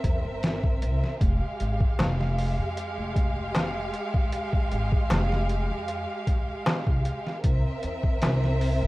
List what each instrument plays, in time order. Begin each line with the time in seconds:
Already playing: violin section C4 A#4 E5
0.04 upright bass E2, kick, closed hi-hat
0.25 upright bass G1
0.43 snare, closed hi-hat
0.64 kick
0.82 upright bass C2, closed hi-hat
1.04 snare
1.20 upright bass F1, violin section G#3 G4 F5, kick, closed hi-hat
1.60 upright bass G#1, closed hi-hat
1.80 kick
1.99 upright bass F1, snare, closed hi-hat, darbuka tek
2.21 snare
2.38 open hi-hat
2.58 upright bass F2
2.77 closed hi-hat
2.98 upright bass F1
3.16 kick, closed hi-hat
3.55 snare, closed hi-hat, darbuka tek
3.94 closed hi-hat
4.14 kick
4.32 closed hi-hat
4.53 kick
4.72 upright bass G#1, closed hi-hat
4.92 kick
5.10 upright bass F1, snare, closed hi-hat, darbuka tek
5.32 snare
5.49 closed hi-hat
5.70 upright bass F2
5.88 closed hi-hat
6.27 kick, closed hi-hat
6.66 snare, closed hi-hat, darbuka tek
6.87 upright bass C2, kick
7.05 closed hi-hat
7.27 snare
7.44 upright bass C2, violin section C4 A#4 E5, kick, closed hi-hat
7.83 upright bass E2, closed hi-hat
8.03 kick
8.22 upright bass C2, snare, closed hi-hat, darbuka tek
8.44 snare
8.61 open hi-hat
8.82 upright bass G1